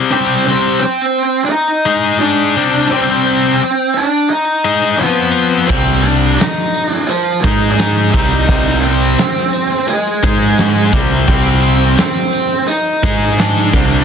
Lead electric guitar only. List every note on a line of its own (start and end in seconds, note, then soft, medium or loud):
0.11 0.47 C4 loud
0.11 0.45 C5 medium
0.48 0.79 C4 medium
0.48 0.80 C5 medium
0.80 1.40 C4 medium
0.80 1.41 C5 medium
1.45 1.49 D4 medium
1.50 2.19 D#4 loud
1.50 2.17 D#5 medium
2.20 2.86 D4 loud
2.20 2.87 D5 medium
2.90 3.98 C4 loud
2.90 3.93 C5 medium
3.94 4.29 D4 loud
3.94 4.29 D5 medium
4.30 5.02 D#4 loud
4.30 4.97 D#5 medium
4.98 5.65 B3 medium
4.98 5.66 B4 medium
5.68 6.05 C4 loud
5.68 6.03 C5 medium
6.02 6.35 D4 loud
6.02 6.38 D5 medium
6.36 6.88 D#4 loud
6.36 7.05 D#5 medium
6.88 7.10 D4 loud
7.07 7.42 F3 medium
7.07 7.41 F4 loud
7.41 7.71 D#4 loud
7.41 7.70 D#5 medium
7.71 7.75 D4 medium
7.71 8.10 D#4 loud
7.78 8.11 D#5 medium
8.11 8.85 D#4 loud
8.11 8.80 D#5 medium
8.81 9.91 C4 loud
8.81 9.84 C5 medium
9.87 10.89 G#3 medium
9.87 10.90 G#4 medium
11.27 11.97 C4 loud
11.27 11.94 C5 medium
11.98 12.68 C4 loud
11.98 12.65 C5 medium
12.68 13.38 D#4 loud
12.68 13.35 D#5 medium
13.38 14.04 D4 loud
13.38 14.04 D5 medium